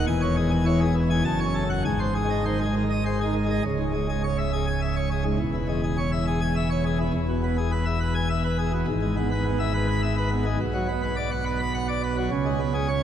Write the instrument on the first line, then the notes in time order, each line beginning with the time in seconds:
pipe organ
0.07 E1 E2 G#5
0.22 C#5
0.36 G#4
0.51 G#5
0.66 E3 C#5
0.80 G#4
0.95 E3
1.10 G#5
1.25 F#1 F#2 A5
1.40 C#5
1.45 C#4
1.54 A4
1.70 F#5
1.85 G#1 G#2 G#5
2.00 C5
2.15 G#4
2.25 G#3
2.30 D#5
2.45 D#3 C5
2.60 G#4
2.65 G#3
2.75 D#3
2.90 D#5
3.06 G#3 C5
3.20 G#4
3.25 D#3
3.35 D#3
3.45 G#3
3.50 D#5
3.65 C#1 C#2
3.80 G#2
3.94 G#3
4.09 G#4
4.24 C#5
4.38 E5
4.53 G#4
4.67 G#5
4.82 E5
4.96 C#5
5.11 G#4
5.25 G#2
5.40 E1 E2
5.54 E3
5.69 G#3
5.83 G#4
5.97 C#5
6.12 E5
6.27 G#4
6.41 G#5
6.56 E5
6.70 C#5
6.85 G#4
7.00 E3
7.14 E1 E2
7.29 B2
7.43 B3
7.58 G#4
7.72 B4
7.85 E5
8.00 B4
8.14 G#5
8.30 E5
8.44 B4
8.58 G#4
8.73 B2
8.88 G#1 G#2
9.02 G#3
9.17 B3
9.31 B4
9.45 B3
9.59 E5
9.73 B4
9.88 B5
10.03 E5
10.17 B4
10.31 B3
10.46 G#3
10.60 B1 B2
10.74 F#3
10.88 B3
11.02 B4
11.16 D5
11.31 F#5
11.45 B4
11.60 B5
11.74 F#5
11.88 D5
12.03 B4
12.17 F#3
12.31 C#2 C#3
12.46 G#3
12.60 B3
12.74 G#4
12.88 C#5